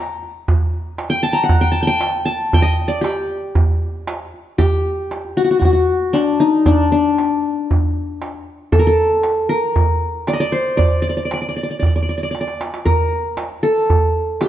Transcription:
Already playing: qanun G5 A#5
0.23 darbuka ka
0.48 darbuka dum
0.73 darbuka ka
0.98 darbuka tek
1.10 qanun G5, darbuka ka
1.23 qanun A5
1.33 qanun A#5
1.44 qanun F#5
1.49 darbuka dum
1.61 qanun G5, darbuka ka
1.72 qanun A5
1.76 darbuka ka
1.83 qanun G5
1.87 qanun G5
2.01 darbuka tek
2.25 qanun A5, darbuka ka
2.53 qanun G5, darbuka dum
2.62 qanun D#5
2.78 darbuka ka
2.88 qanun D5, darbuka ka
3.01 qanun G4, darbuka tek
3.17 darbuka ka
3.55 darbuka dum
3.69 darbuka ka
3.82 darbuka ka
4.07 darbuka tek
4.20 darbuka ka
4.34 darbuka ka
4.58 qanun G4, darbuka dum
4.86 darbuka ka
5.11 darbuka tek
5.25 darbuka ka
5.37 qanun F#4
5.44 qanun F#4
5.51 qanun F#4
5.59 qanun F#4, darbuka dum
5.65 qanun F#4
5.73 qanun F#4, darbuka ka
6.13 qanun D4, darbuka tek
6.28 darbuka ka
6.40 qanun D#4
6.66 qanun D4, darbuka dum
6.92 qanun D4, darbuka ka
7.18 darbuka tek
7.31 darbuka ka
7.71 darbuka dum
7.83 darbuka ka
8.22 darbuka tek
8.34 darbuka ka
8.72 qanun A4, darbuka dum
8.79 qanun A#4
8.87 qanun A4
8.99 darbuka ka
9.23 darbuka tek
9.37 darbuka ka
9.49 qanun A#4
9.76 darbuka dum
9.90 darbuka ka
10.27 qanun D5, darbuka tek
10.33 qanun D#5
10.40 qanun D5, darbuka ka
10.52 qanun C5
10.77 qanun D5, darbuka dum
11.02 qanun D5, darbuka ka
11.09 qanun D5
11.17 qanun D5, darbuka ka
11.25 qanun D5
11.31 qanun D5, darbuka tek
11.42 qanun D5
11.49 qanun D5
11.56 qanun D5
11.63 qanun D5
11.71 qanun D5
11.79 qanun D5, darbuka dum
11.86 qanun D5
11.96 qanun D5, darbuka ka
12.02 qanun D5
12.09 qanun D5, darbuka ka
12.18 qanun D5
12.23 qanun D5
12.31 qanun D5, darbuka tek
12.41 qanun D5
12.48 darbuka ka
12.61 darbuka tek
12.74 darbuka ka
12.85 qanun A#4, darbuka dum
13.12 darbuka ka
13.37 darbuka tek
13.51 darbuka ka
13.63 qanun A4
13.90 darbuka dum
14.03 darbuka ka
14.41 qanun G4, darbuka tek

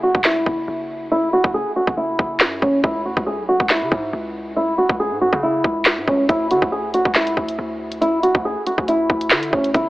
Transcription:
Already playing: 808-style bass F#1
0.03 nylon-string guitar F#4
0.15 808-style bass E1, kick
0.24 nylon-string guitar E4, snare, clap
0.46 808-style bass F#1, kick
0.68 808-style bass F#1
1.12 nylon-string guitar E4
1.33 nylon-string guitar F#4
1.44 808-style bass F#1, kick
1.54 nylon-string guitar G#4
1.76 nylon-string guitar F#4
1.87 808-style bass F#1, kick
1.97 nylon-string guitar E4
2.19 808-style bass F#1, kick
2.40 808-style bass F#2, snare, clap
2.62 808-style bass F#1, nylon-string guitar C#4, kick
2.84 808-style bass C#2, nylon-string guitar E4, kick
3.05 808-style bass D2, nylon-string guitar F#4
3.17 808-style bass C#2, kick
3.26 nylon-string guitar G#4
3.38 808-style bass B1
3.49 nylon-string guitar F#4
3.60 808-style bass C#2, kick
3.69 nylon-string guitar E4, snare, clap
3.82 808-style bass C#3
3.92 808-style bass G#2, kick
4.13 808-style bass C#2
4.56 nylon-string guitar E4
4.78 nylon-string guitar F#4
4.89 808-style bass C#2, kick
5.00 nylon-string guitar G#4
5.11 808-style bass G#2
5.21 nylon-string guitar F#4
5.33 808-style bass C#3, kick
5.43 nylon-string guitar E4
5.64 808-style bass C#2, kick
5.85 snare, clap
5.97 808-style bass G#2
6.08 808-style bass C#2, nylon-string guitar C#4, kick
6.29 808-style bass D2, nylon-string guitar E4, kick, closed hi-hat
6.51 808-style bass D3, nylon-string guitar F#4, closed hi-hat
6.62 808-style bass D2, kick
6.72 nylon-string guitar G#4
6.94 nylon-string guitar F#4, closed hi-hat
7.05 808-style bass C#2, kick
7.15 nylon-string guitar E4, snare, clap, closed hi-hat
7.27 closed hi-hat
7.37 808-style bass D2, kick
7.48 closed hi-hat
7.59 808-style bass D2
7.92 closed hi-hat
8.01 nylon-string guitar E4, closed hi-hat
8.23 nylon-string guitar F#4, closed hi-hat
8.35 808-style bass D2, kick
8.45 nylon-string guitar G#4
8.66 nylon-string guitar F#4, closed hi-hat
8.78 808-style bass D2, kick
8.88 nylon-string guitar E4, closed hi-hat
9.10 808-style bass D2, kick
9.21 closed hi-hat
9.31 808-style bass D3, snare, clap
9.43 closed hi-hat
9.53 808-style bass D2, nylon-string guitar C#4, kick
9.64 closed hi-hat
9.74 808-style bass G1, nylon-string guitar E4, kick, closed hi-hat

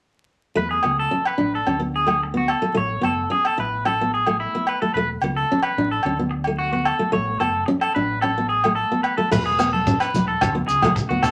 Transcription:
0.55 fretless electric bass E2, steel-string acoustic guitar A3, clean electric guitar B4
0.71 clean electric guitar G#4
0.83 fretless electric bass C#2, steel-string acoustic guitar B3, low agogo
0.99 clean electric guitar A4
1.11 steel-string acoustic guitar C#4
1.25 clean electric guitar B4, low agogo
1.38 fretless electric bass A1, steel-string acoustic guitar D4
1.55 clean electric guitar A4
1.67 fretless electric bass D2, steel-string acoustic guitar C#4, low agogo
1.80 steel-string acoustic guitar B3
1.96 clean electric guitar G#4
2.07 steel-string acoustic guitar A3, low agogo
2.23 muted clean electric guitar stroke
2.34 steel-string acoustic guitar B3, clean electric guitar F#4
2.48 clean electric guitar A4, low agogo
2.62 steel-string acoustic guitar A3
2.74 fretless electric bass A1, steel-string acoustic guitar A3, clean electric guitar C#5
3.01 fretless electric bass F#1, steel-string acoustic guitar B3, clean electric guitar A4, low agogo
3.30 steel-string acoustic guitar C#4, clean electric guitar G#4
3.45 clean electric guitar A4, low agogo
3.58 fretless electric bass A1, steel-string acoustic guitar E4, clean electric guitar B4
3.85 steel-string acoustic guitar C#4, clean electric guitar A4, low agogo
4.01 steel-string acoustic guitar B3
4.14 clean electric guitar G#4
4.26 steel-string acoustic guitar A3, low agogo
4.40 clean electric guitar E4
4.55 steel-string acoustic guitar B3
4.67 clean electric guitar B4, low agogo
4.82 steel-string acoustic guitar A3, clean electric guitar A4
4.94 fretless electric bass E1, steel-string acoustic guitar A3, clean electric guitar B4
5.22 fretless electric bass C#2, steel-string acoustic guitar B3, low agogo
5.37 clean electric guitar A4
5.52 steel-string acoustic guitar C#4
5.62 clean electric guitar B4, low agogo
5.77 fretless electric bass A1, steel-string acoustic guitar D4
5.91 clean electric guitar A4
6.03 fretless electric bass D2, steel-string acoustic guitar C#4, low agogo
6.19 steel-string acoustic guitar B3
6.31 muted clean electric guitar stroke
6.44 steel-string acoustic guitar A3, low agogo
6.58 clean electric guitar F#4
6.73 steel-string acoustic guitar B3, clean electric guitar F#4
6.85 clean electric guitar A4, low agogo
6.99 steel-string acoustic guitar A3
7.12 fretless electric bass A1, steel-string acoustic guitar A3, clean electric guitar C#5
7.40 fretless electric bass F#1, steel-string acoustic guitar B3, clean electric guitar A4, low agogo
7.66 steel-string acoustic guitar C#4, muted clean electric guitar stroke
7.81 clean electric guitar A4, low agogo
7.95 fretless electric bass A1, steel-string acoustic guitar D4, clean electric guitar B4
8.21 steel-string acoustic guitar C#4, clean electric guitar A4, low agogo
8.38 steel-string acoustic guitar B3
8.49 clean electric guitar G#4
8.64 steel-string acoustic guitar A3, low agogo
8.75 clean electric guitar A4
8.92 steel-string acoustic guitar B3
9.03 clean electric guitar B4, low agogo
9.17 steel-string acoustic guitar A3, clean electric guitar A4
9.31 fretless electric bass E1, steel-string acoustic guitar A3, clean electric guitar B4, kick, crash, shekere
9.46 clean electric guitar G#4
9.59 steel-string acoustic guitar B3, cross-stick, closed hi-hat, low agogo, shekere
9.73 clean electric guitar A4, high conga
9.87 steel-string acoustic guitar C#4, kick, shekere
10.00 clean electric guitar B4, cross-stick, low agogo
10.14 fretless electric bass E1, muted steel-string acoustic guitar stroke, closed hi-hat, high conga, low conga, shekere
10.28 clean electric guitar A4
10.41 fretless electric bass D2, steel-string acoustic guitar C#4, kick, cross-stick, low agogo, shekere
10.55 steel-string acoustic guitar B3
10.68 fretless electric bass C#2, clean electric guitar G#4, closed hi-hat, shekere
10.82 steel-string acoustic guitar A3, cross-stick, high conga, low conga, low agogo
10.96 muted clean electric guitar stroke, kick, shekere
11.09 fretless electric bass D2, steel-string acoustic guitar B3, clean electric guitar F#4
11.22 fretless electric bass C#2, clean electric guitar A4, cross-stick, closed hi-hat, low conga, low agogo, shekere

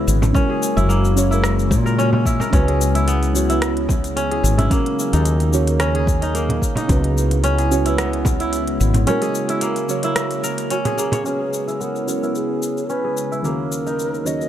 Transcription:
Already playing: ambient pad C#3 G#3 B3 E4, kora B3 C#4 E4 G#4, synth keys C#4 F#4 B4 C#5, singing bowl C#5
0.07 fretless electric bass G#1, cabasa
0.22 frame drum, cabasa
0.33 ambient pad C#3 A#3 F#4, synth keys C#4 F#4, kora C#4, kick, frame drum, cabasa
0.37 synth keys A#4
0.50 kora G#4
0.63 cabasa
0.77 fretless electric bass F#1, kora E4, cabasa
0.89 kora A#3, cabasa
1.05 cabasa
1.16 synth keys C#4 F#4 C#5, cabasa
1.30 synth keys C#4 F#4, kora E4, cabasa
1.34 synth keys A#4
1.44 cross-stick, cabasa
1.59 cabasa
1.71 fretless electric bass A#2, kick, cabasa
1.86 kora A#4, cabasa
1.98 kora C#4, cabasa
2.13 kora C#4, frame drum
2.25 kora E4, kick, cabasa
2.40 kora A#4, frame drum, cabasa
2.51 fretless electric bass C#2, ambient pad B3 E4, synth keys C#4 F#4, kora C#4, kick, closed hi-hat, frame drum, cabasa
2.55 synth keys B4
2.68 kora G#4, closed hi-hat
2.81 cabasa
2.95 kora E4, closed hi-hat, cabasa
3.08 kora B3, closed hi-hat, cabasa
3.23 closed hi-hat, cabasa
3.34 synth keys C#4 F#4 C#5, cabasa
3.47 synth keys C#4 F#4, kora E4, closed hi-hat, cabasa
3.51 synth keys B4
3.62 cross-stick, closed hi-hat, cabasa
3.77 closed hi-hat
3.89 kick, frame drum, cabasa
4.04 closed hi-hat, cabasa
4.16 kora C#4, closed hi-hat, cabasa
4.31 kora G#4, closed hi-hat
4.43 fretless electric bass G#1, cabasa
4.58 kora E4, closed hi-hat, frame drum, cabasa
4.70 ambient pad F#3 A#3 D#4, kora A#3, synth keys C#4 F#4 A#4, kick, closed hi-hat, frame drum, cabasa
4.86 closed hi-hat
4.99 cabasa
5.13 fretless electric bass D#2, kora D#4, closed hi-hat, cabasa
5.25 closed hi-hat, cabasa
5.40 closed hi-hat, cabasa
5.52 synth keys C#4 F#4 C#5, cabasa
5.66 synth keys C#4 F#4 A#4, closed hi-hat, cabasa
5.80 kora C#4, cross-stick, closed hi-hat, cabasa
5.95 kora G#4, closed hi-hat
6.07 kick, cabasa
6.22 kora D#4, closed hi-hat, cabasa
6.35 kora A#3, closed hi-hat, cabasa
6.49 closed hi-hat, frame drum
6.62 kick, cabasa
6.75 kora D#4, closed hi-hat, frame drum, cabasa
6.87 fretless electric bass C#2, ambient pad G#3 B3 E4, synth keys C#4 F#4 B4, kick, closed hi-hat, frame drum, cabasa
7.04 closed hi-hat
7.18 cabasa
7.31 closed hi-hat, cabasa
7.44 kora C#4, closed hi-hat, cabasa
7.58 kora G#4, closed hi-hat, cabasa
7.71 synth keys C#4 F#4 C#5, cabasa
7.84 synth keys C#4 F#4, kora E4, closed hi-hat, cabasa
7.88 synth keys B4
7.98 kora B3, cross-stick, closed hi-hat, cabasa
8.13 closed hi-hat
8.25 kick, frame drum, cabasa
8.40 kora E4, closed hi-hat, cabasa
8.53 closed hi-hat, cabasa
8.67 closed hi-hat
8.80 fretless electric bass G#1, cabasa
8.94 closed hi-hat, frame drum, cabasa
9.06 ambient pad A#3 F#4, synth keys C#4 F#4 A#4, kora C#4, closed hi-hat, frame drum, cabasa
9.22 kora G#4, closed hi-hat, cabasa
9.35 cabasa
9.49 kora E4, closed hi-hat, cabasa
9.61 kora A#3, closed hi-hat, cabasa
9.76 closed hi-hat, cabasa
9.88 synth keys C#4 F#4 C#5, cabasa
10.02 synth keys C#4 F#4, kora E4, closed hi-hat, cabasa
10.06 synth keys A#4
10.16 cross-stick, closed hi-hat, cabasa
10.31 closed hi-hat, cabasa
10.43 kora A#4, cabasa
10.58 closed hi-hat, cabasa
10.70 kora C#4, native american-style wooden flute F#4, closed hi-hat, cabasa
10.85 kora G#4, closed hi-hat, frame drum, cabasa
10.98 kora A#3, native american-style wooden flute G#4, cabasa
11.12 kora C#5, closed hi-hat, frame drum, cabasa
11.23 ambient pad C#3 G#3 B3 E4, synth keys C#4 F#4 B4, kora C#4, native american-style wooden flute G#4, singing bowl C#5, cabasa
11.40 kora G#4
11.53 cabasa
11.68 kora E4, cabasa
11.80 kora B3, native american-style wooden flute A#4, cabasa
11.96 cabasa
12.06 synth keys C#4 F#4 C#5, cabasa
12.20 synth keys C#4 F#4, kora E4, cabasa
12.24 synth keys B4
12.35 native american-style wooden flute G#4, cabasa
12.62 cabasa
12.77 cabasa
12.89 kora C#4, native american-style wooden flute B4, cabasa
13.04 kora G#4
13.17 cabasa
13.32 kora E4, cabasa
13.42 synth keys D#3 C#4 F#4 A#4, ambient pad A#3 D#4 F#4, kora A#3, native american-style wooden flute A#4, cabasa
13.72 cabasa
13.86 kora D#4, cabasa
13.99 cabasa
14.14 cabasa
14.25 synth keys D#3 C#4 F#4 C#5, native american-style wooden flute D#5, cabasa
14.39 synth keys D#3 C#4 F#4 A#4, cabasa

